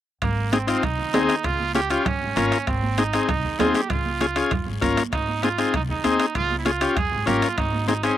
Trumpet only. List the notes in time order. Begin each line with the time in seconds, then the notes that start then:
0.22 A#3
0.52 C4
0.69 C4
0.83 D#4
1.45 F4
1.75 G4
1.91 F4
2.06 C#4
2.68 C4
2.98 D#4
3.28 D#4
3.59 F4
3.74 G4
3.90 F4
5.13 D#4
5.43 F4
5.75 D#4
5.90 D#4
6.06 D#4
6.36 F4
6.58 E4
6.65 F4
6.96 G#4
7.27 G4
7.42 F4
7.58 D#4
7.88 D#4
8.04 C#4